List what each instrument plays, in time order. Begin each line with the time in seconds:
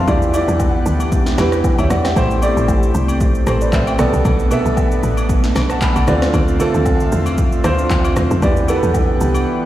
Already playing: grand piano D3 F5 G5 A5
0.07 log drum bass E2, grand piano E3 E4 G4 D5, analog synth pad E3 B3 D4 G4 F#5, kick, high agogo, shaker
0.22 shaker
0.33 grand piano E3 E4 G4 D5, high agogo, shaker
0.48 log drum bass E2, shaker
0.59 kick, low woodblock, shaker
0.86 log drum bass D2, shaker
1.00 high agogo, shaker
1.12 kick, shaker
1.26 snare, shaker
1.37 log drum bass E2, grand piano E3 E4 G4 B4, cross-stick, snare, high agogo, shaker
1.52 cross-stick, shaker
1.64 kick, low woodblock, shaker
1.78 log drum bass D2, grand piano C#5 E5, high agogo, shaker
1.90 log drum bass E2, grand piano D5 F#5, cross-stick, shaker
2.05 grand piano E5 G5, cross-stick, snare, shaker
2.16 log drum bass A1, grand piano A3 E4 G4 C5, analog synth pad A3 C4, kick, high agogo, shaker
2.31 shaker
2.42 grand piano A3 E4 G4 D5, high agogo, shaker
2.57 log drum bass A1, shaker
2.68 kick, low woodblock, shaker
2.83 shaker
2.95 log drum bass C2, shaker
3.08 high agogo, shaker
3.21 kick, shaker
3.35 shaker
3.47 log drum bass A1, grand piano A4 C5, cross-stick, high agogo, shaker
3.61 grand piano B4 D5, shaker
3.73 log drum bass A1, grand piano C5 E5, kick, clap, low woodblock, shaker
3.87 grand piano E5 G5, high agogo, shaker
3.98 log drum bass B1, grand piano B2 B3 A4 D5, analog synth pad B3 D4, cross-stick, shaker
4.13 log drum bass C2, shaker
4.25 log drum bass B1, kick, high agogo, shaker
4.39 shaker
4.51 grand piano B2 B3 A4 E5, high agogo, shaker
4.66 log drum bass B1, shaker
4.77 kick, low woodblock, shaker
4.91 shaker
5.03 log drum bass A1, shaker
5.17 high agogo, shaker
5.29 kick, shaker
5.44 snare, shaker
5.56 log drum bass B1, cross-stick, snare, high agogo, shaker
5.70 grand piano F#5 A5, cross-stick, shaker
5.82 grand piano G#5 B5, kick, clap, low woodblock, shaker
5.96 log drum bass B1, grand piano F#5 A5, high agogo, shaker
6.07 log drum bass D2, grand piano D3 C4 F4 D5, analog synth pad D3 C4 F4 E5, cross-stick, shaker
6.22 cross-stick, snare, shaker
6.34 log drum bass D2, kick, high agogo, shaker
6.48 shaker
6.60 grand piano D3 C4 F4 A4, high agogo, shaker
6.74 log drum bass D2, shaker
6.85 kick, low woodblock, shaker
7.00 shaker
7.12 log drum bass E2, shaker
7.26 high agogo, shaker
7.38 kick, shaker
7.52 shaker
7.64 log drum bass D2, grand piano D3 C4 F4 C5, cross-stick, high agogo, shaker
7.79 shaker
7.90 log drum bass D2, kick, clap, low woodblock, shaker
8.05 high agogo, shaker
8.16 log drum bass E2, cross-stick, shaker
8.31 log drum bass F2, shaker
8.42 log drum bass E2, grand piano E3 B3 G4 D5, analog synth pad E3 B3 D4 G4 F#5, kick, high agogo, shaker
8.57 shaker
8.68 grand piano E3 B3 G4 A4, high agogo, shaker
8.76 grand piano B4
8.83 log drum bass E2, shaker
8.94 kick, low woodblock, shaker
9.21 log drum bass C2, shaker
9.35 high agogo, shaker